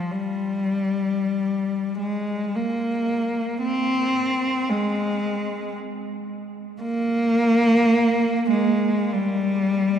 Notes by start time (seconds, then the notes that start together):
Already playing: F3
0.12 G3
1.98 G#3
2.55 A#3
3.63 C4
4.69 G#3
6.82 A#3
8.50 G#3
9.12 G3